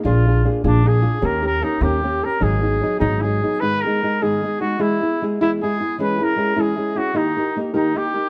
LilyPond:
<<
  \new Staff \with { instrumentName = "Trumpet" } { \time 6/8 \key gis \minor \tempo 4. = 101 eis'4 r8 d'8 gis'4 | ais'8 ais'8 dis'8 g'4 ais'8 | gis'4. dis'8 gis'4 | b'8 ais'4 gis'4 fis'8 |
e'4 r8 e'8 gis'4 | b'8 ais'4 gis'4 fis'8 | dis'4 r8 dis'8 g'4 | }
  \new Staff \with { instrumentName = "Nylon-string guitar" } { \time 6/8 \key gis \minor <ais d' eis' gis'>8 <d' eis' gis'>8 <ais d' eis' gis'>8 <ais d' eis' gis'>8 <ais d' eis' gis'>8 <d' eis' gis'>8 | <dis ais cis' g' ais'>8 <cis' g' ais'>8 <ais cis' g' ais'>8 <dis ais cis' g' ais'>8 <ais cis' g' ais'>8 <cis' g' ais'>8 | <gis, dis fis b dis' gis'>8 <fis b dis' gis'>8 <fis b dis' gis'>8 <gis, dis fis b dis' gis'>8 <fis b dis' gis'>8 <fis b dis' gis'>8 | <gis, dis gis b dis' gis'>8 <gis b dis' gis'>8 <gis b dis' gis'>8 <gis, dis gis b dis' gis'>8 <gis b dis' gis'>8 <gis b dis' gis'>8 |
<e gis b e' gis'>8 <b e' gis'>8 <gis b e' gis'>8 <e gis b e' gis'>8 <gis b e' gis'>8 <b e'>8 | <e gis cis' e' gis'>8 <cis' e' gis'>8 <gis cis' e' gis'>8 <e gis cis' e' gis'>8 <gis cis' e' gis'>8 <cis' e' gis'>8 | <dis ais dis' g' ais'>8 <dis' g' ais'>8 <ais dis' g' ais'>8 <dis ais dis' g' ais'>8 <ais dis' g' ais'>8 <dis' g' ais'>8 | }
  \new Staff \with { instrumentName = "Upright bass" } { \clef bass \time 6/8 \key gis \minor ais,,4. ais,,4. | dis,4. dis,4. | gis,,4. gis,,4. | r2. |
r2. | r2. | r2. | }
>>